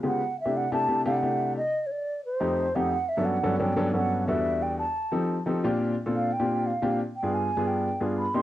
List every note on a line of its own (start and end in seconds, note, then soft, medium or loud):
0.03 0.21 C#3 medium
0.03 0.21 G#3 medium
0.03 0.21 B3 medium
0.03 0.21 F4 medium
0.03 0.21 G4 medium
0.03 0.37 F#5 loud
0.40 0.58 E5 medium
0.45 0.64 C3 medium
0.45 0.64 A3 medium
0.45 0.64 D4 medium
0.45 0.64 E4 medium
0.45 0.64 G4 medium
0.57 0.73 F#5 medium
0.72 0.84 C3 medium
0.72 0.84 A3 medium
0.72 0.84 D4 medium
0.72 0.84 E4 medium
0.72 0.84 G4 medium
0.72 1.04 A5 loud
0.88 1.01 C3 medium
0.88 1.01 A3 medium
0.88 1.01 D4 medium
0.88 1.00 E4 medium
0.88 1.01 G4 medium
1.06 1.18 C3 medium
1.06 1.18 A3 medium
1.06 1.18 D4 medium
1.06 1.18 E4 medium
1.06 1.18 G4 loud
1.06 1.53 F#5 loud
1.22 1.57 C3 medium
1.22 1.57 A3 medium
1.22 1.57 D4 medium
1.22 1.57 E4 medium
1.22 1.57 G4 medium
1.57 1.88 D#5 loud
1.86 1.93 C#5 medium
1.91 2.25 D5 medium
2.25 2.77 C5 medium
2.40 2.65 F2 medium
2.40 2.65 A3 medium
2.40 2.65 C4 medium
2.40 2.65 D#4 medium
2.40 2.65 G4 medium
2.75 2.92 F2 medium
2.75 2.92 A3 medium
2.75 2.92 C4 medium
2.75 2.92 D#4 medium
2.75 2.93 G4 medium
2.75 3.10 F#5 loud
3.09 3.27 E5 medium
3.17 3.35 G2 medium
3.17 3.35 F#3 medium
3.17 3.36 B3 medium
3.17 3.36 C#4 medium
3.17 3.35 D4 medium
3.17 3.35 A4 medium
3.25 3.59 F#5 medium
3.43 3.55 G2 medium
3.43 3.55 F#3 medium
3.43 3.55 B3 medium
3.43 3.55 C#4 medium
3.43 3.55 D4 medium
3.43 3.55 A4 medium
3.59 3.72 G2 medium
3.59 3.72 F#3 medium
3.59 3.72 B3 medium
3.59 3.72 C#4 medium
3.59 3.72 D4 medium
3.59 3.72 A4 medium
3.59 3.92 G5 medium
3.76 3.89 G2 medium
3.76 3.89 F#3 medium
3.76 3.89 B3 medium
3.76 3.89 C#4 medium
3.76 3.89 D4 medium
3.76 3.89 A4 loud
3.93 4.28 G2 medium
3.93 4.28 F#3 medium
3.93 4.27 B3 medium
3.93 4.28 C#4 medium
3.93 4.27 D4 medium
3.93 4.27 A4 medium
3.93 4.25 F#5 loud
4.27 4.82 E2 medium
4.27 4.82 G3 medium
4.27 4.82 B3 medium
4.27 4.82 D4 medium
4.27 4.82 F#4 medium
4.27 4.82 A4 medium
4.27 4.64 E5 medium
4.62 4.78 G5 medium
4.79 5.43 A5 medium
5.12 5.36 F3 medium
5.12 5.36 C4 medium
5.12 5.36 D#4 medium
5.12 5.36 G4 medium
5.12 5.36 A4 medium
5.46 5.63 F3 medium
5.46 5.63 C4 medium
5.46 5.63 D#4 medium
5.46 5.63 G4 medium
5.46 5.63 A4 medium
5.64 5.93 A#2 medium
5.64 5.94 C4 medium
5.64 5.94 D4 medium
5.64 5.93 F4 medium
5.64 5.94 G4 loud
6.06 6.30 A#2 medium
6.06 6.30 C4 medium
6.06 6.30 D4 medium
6.06 6.30 F4 medium
6.06 6.30 A4 medium
6.15 6.34 F5 medium
6.32 6.68 G5 medium
6.39 6.69 A#2 medium
6.39 6.69 C4 medium
6.39 6.69 D4 medium
6.39 6.69 F4 medium
6.39 6.69 G4 medium
6.66 7.00 F5 medium
6.82 6.99 A#2 medium
6.82 6.99 C4 medium
6.82 6.99 D4 medium
6.82 6.99 F4 medium
6.82 6.99 G4 medium
7.16 7.35 G5 medium
7.23 7.47 G2 medium
7.23 7.47 B3 medium
7.23 7.47 D4 medium
7.23 7.48 F4 medium
7.23 7.48 G#4 medium
7.33 7.69 G#5 medium
7.57 7.87 G2 medium
7.57 7.87 B3 medium
7.57 7.87 D4 medium
7.57 7.87 F4 medium
7.57 7.87 G#4 medium
7.67 8.01 G5 medium
8.00 8.24 G2 medium
8.00 8.24 B3 medium
8.00 8.24 D4 medium
8.00 8.24 F4 medium
8.00 8.24 G#4 medium
8.18 8.36 B5 medium
8.34 8.42 C3 medium
8.34 8.42 A#3 medium
8.34 8.42 D4 medium
8.34 8.42 D#4 medium
8.34 8.42 G4 medium
8.34 8.42 C6 loud